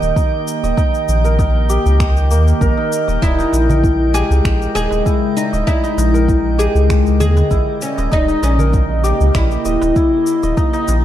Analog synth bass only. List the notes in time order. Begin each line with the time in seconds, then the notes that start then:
0.02 D#1
0.64 D#1
1.09 A#1
1.86 C#2
2.31 D#2
2.61 A#1
3.08 D#1
3.23 D#1
3.53 A#1
4.31 C#2
4.45 A#1
4.75 D#1
4.92 D#1
5.53 D#1
5.98 A#1
6.75 C#2
7.20 D#2
7.51 A#1
7.98 D#1
8.12 D#1
8.43 A#1
9.21 C#2
9.35 A#1
9.65 D#1
9.82 D#1
10.43 D#1
10.88 A#1